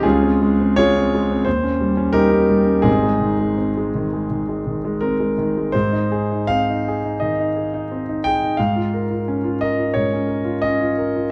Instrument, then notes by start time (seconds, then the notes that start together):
grand piano
0.03 C#2 C#4 F4 G#4
0.23 C4
0.42 G#3
0.60 C4
0.76 G#3 F4 G#4 C#5
0.98 C4
1.15 G#3
1.32 C4
1.45 D#2 C5
1.63 C#4
1.80 G3
1.97 C#4
2.13 G3 D#4 G4 A#4
2.31 C#4
2.50 G3
2.66 C#4
2.82 G#1 G#2 C4 D#4 G#4
3.03 G#3
3.21 D#3
3.40 G#3
3.58 C4
3.77 G#3
3.95 D#3
4.13 G#3
4.31 D#3
4.49 G#3
4.67 D#3
4.85 G#3
5.01 C4 A#4
5.20 G#3
5.38 D#3
5.58 G#3
5.72 G#2 C5
5.92 D#4
6.12 G#4
6.32 D#4
6.47 C4 F5
6.70 D#4
6.88 G#4
7.04 D#4
7.20 D#3 D#5
7.39 D#4
7.56 G#4
7.74 D#4
7.92 C4
8.09 D#4
8.24 G#4 G5
8.44 D#4
8.57 G#2 F5
8.76 F4
8.94 A#4
9.11 F4
9.28 C#4
9.44 F4
9.61 A#4 D#5
9.78 F4
9.94 G#2 C#5
10.13 C#4
10.28 A#4
10.45 F4
10.62 C#4 D#5
10.80 F4
10.98 A#4
11.16 F4